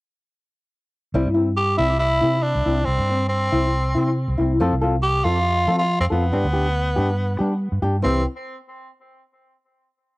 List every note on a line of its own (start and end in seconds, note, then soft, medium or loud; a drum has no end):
1.14 1.24 C2 loud
1.14 1.27 G3 medium
1.14 1.27 C4 medium
1.14 1.28 E4 medium
1.26 1.76 G2 medium
1.34 1.49 C4 soft
1.34 1.48 E4 medium
1.57 1.77 G4 loud
1.78 2.20 C2 medium
1.78 1.93 C4 soft
1.78 1.91 E4 soft
1.78 1.99 E4 loud
1.99 2.44 E4 loud
2.21 2.53 C3 medium
2.21 2.36 C4 soft
2.21 2.35 E4 medium
2.42 2.87 D4 medium
2.55 2.65 C2 medium
2.66 2.86 C2 medium
2.66 2.80 C4 soft
2.66 2.79 E4 soft
2.85 2.98 C2 loud
2.85 3.28 C4 medium
2.99 3.49 G2 medium
3.09 3.23 C4 soft
3.09 muted nylon-string guitar stroke medium
3.29 4.12 C4 medium
3.52 3.93 C2 medium
3.52 3.66 C4 soft
3.52 3.65 E4 medium
3.95 4.26 C3 medium
3.95 4.09 C4 soft
3.95 4.08 E4 medium
4.28 4.38 C2 medium
4.38 4.59 C2 medium
4.38 4.53 C4 soft
4.38 4.51 E4 medium
4.60 4.71 F2 loud
4.60 4.73 F3 medium
4.60 4.73 C4 medium
4.60 4.73 F4 loud
4.60 4.74 A4 medium
4.72 5.22 C2 medium
4.81 4.96 C4 soft
4.81 4.95 F4 medium
4.81 4.95 A4 medium
5.03 5.25 G4 loud
5.24 5.65 F2 medium
5.24 5.39 C4 soft
5.24 5.78 F4 loud
5.24 5.38 F4 soft
5.24 5.38 A4 soft
5.68 5.98 F3 medium
5.68 5.82 C4 soft
5.68 5.81 F4 soft
5.68 5.81 A4 medium
5.79 5.98 F4 loud
6.00 6.10 F2 medium
6.00 6.05 C4 medium
6.10 6.31 F2 medium
6.10 7.58 B3 medium
6.10 6.24 C4 soft
6.10 6.24 F4 soft
6.10 6.23 A4 medium
6.32 6.43 G2 loud
6.32 6.45 B3 medium
6.32 6.45 D4 medium
6.32 6.46 G4 medium
6.44 6.94 D2 medium
6.53 6.67 D4 soft
6.53 6.66 G4 medium
6.96 7.37 G2 medium
6.96 7.10 D4 soft
6.96 7.09 G4 medium
7.39 7.70 G3 medium
7.39 7.53 D4 medium
7.39 7.52 G4 medium
7.72 7.81 G2 medium
7.82 8.02 G2 medium
7.82 7.96 D4 soft
7.82 7.95 G4 medium
8.02 8.24 C2 medium
8.02 8.20 E3 medium
8.02 8.21 C4 medium
8.02 8.24 C4 medium
8.02 8.21 E4 medium
8.02 8.22 G4 medium